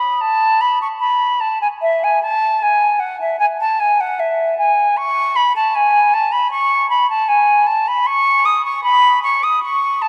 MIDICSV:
0, 0, Header, 1, 2, 480
1, 0, Start_track
1, 0, Tempo, 792602
1, 1097, Time_signature, 4, 2, 24, 8
1, 2535, Tempo, 778210
1, 6173, End_track
2, 0, Start_track
2, 0, Title_t, "Flute"
2, 0, Program_c, 0, 73
2, 0, Note_on_c, 0, 83, 67
2, 125, Note_on_c, 0, 81, 73
2, 134, Note_off_c, 0, 83, 0
2, 367, Note_on_c, 0, 83, 70
2, 376, Note_off_c, 0, 81, 0
2, 487, Note_off_c, 0, 83, 0
2, 492, Note_on_c, 0, 85, 64
2, 528, Note_off_c, 0, 85, 0
2, 600, Note_on_c, 0, 83, 64
2, 849, Note_on_c, 0, 81, 62
2, 858, Note_off_c, 0, 83, 0
2, 972, Note_off_c, 0, 81, 0
2, 975, Note_on_c, 0, 80, 57
2, 1011, Note_off_c, 0, 80, 0
2, 1098, Note_on_c, 0, 76, 83
2, 1231, Note_on_c, 0, 80, 67
2, 1240, Note_off_c, 0, 76, 0
2, 1341, Note_off_c, 0, 80, 0
2, 1344, Note_on_c, 0, 81, 74
2, 1589, Note_on_c, 0, 80, 74
2, 1598, Note_off_c, 0, 81, 0
2, 1812, Note_on_c, 0, 78, 64
2, 1821, Note_off_c, 0, 80, 0
2, 1935, Note_off_c, 0, 78, 0
2, 1940, Note_on_c, 0, 76, 63
2, 2048, Note_off_c, 0, 76, 0
2, 2052, Note_on_c, 0, 80, 90
2, 2088, Note_off_c, 0, 80, 0
2, 2182, Note_on_c, 0, 81, 77
2, 2298, Note_on_c, 0, 80, 77
2, 2307, Note_off_c, 0, 81, 0
2, 2423, Note_on_c, 0, 78, 75
2, 2432, Note_off_c, 0, 80, 0
2, 2539, Note_on_c, 0, 76, 69
2, 2548, Note_off_c, 0, 78, 0
2, 2772, Note_off_c, 0, 76, 0
2, 2776, Note_on_c, 0, 80, 74
2, 3016, Note_on_c, 0, 85, 92
2, 3025, Note_off_c, 0, 80, 0
2, 3256, Note_on_c, 0, 83, 83
2, 3266, Note_off_c, 0, 85, 0
2, 3376, Note_off_c, 0, 83, 0
2, 3379, Note_on_c, 0, 81, 73
2, 3499, Note_on_c, 0, 80, 79
2, 3508, Note_off_c, 0, 81, 0
2, 3736, Note_on_c, 0, 81, 83
2, 3745, Note_off_c, 0, 80, 0
2, 3850, Note_on_c, 0, 83, 75
2, 3859, Note_off_c, 0, 81, 0
2, 3962, Note_off_c, 0, 83, 0
2, 3965, Note_on_c, 0, 85, 94
2, 4203, Note_off_c, 0, 85, 0
2, 4206, Note_on_c, 0, 83, 73
2, 4325, Note_off_c, 0, 83, 0
2, 4329, Note_on_c, 0, 81, 86
2, 4444, Note_on_c, 0, 80, 77
2, 4453, Note_off_c, 0, 81, 0
2, 4680, Note_on_c, 0, 81, 72
2, 4689, Note_off_c, 0, 80, 0
2, 4810, Note_on_c, 0, 83, 80
2, 4819, Note_off_c, 0, 81, 0
2, 4925, Note_on_c, 0, 85, 102
2, 4935, Note_off_c, 0, 83, 0
2, 5165, Note_on_c, 0, 87, 91
2, 5174, Note_off_c, 0, 85, 0
2, 5283, Note_off_c, 0, 87, 0
2, 5287, Note_on_c, 0, 85, 72
2, 5396, Note_off_c, 0, 85, 0
2, 5399, Note_on_c, 0, 83, 89
2, 5638, Note_off_c, 0, 83, 0
2, 5645, Note_on_c, 0, 85, 81
2, 5769, Note_on_c, 0, 87, 73
2, 5779, Note_off_c, 0, 85, 0
2, 5887, Note_off_c, 0, 87, 0
2, 5891, Note_on_c, 0, 85, 84
2, 6129, Note_on_c, 0, 81, 76
2, 6139, Note_off_c, 0, 85, 0
2, 6173, Note_off_c, 0, 81, 0
2, 6173, End_track
0, 0, End_of_file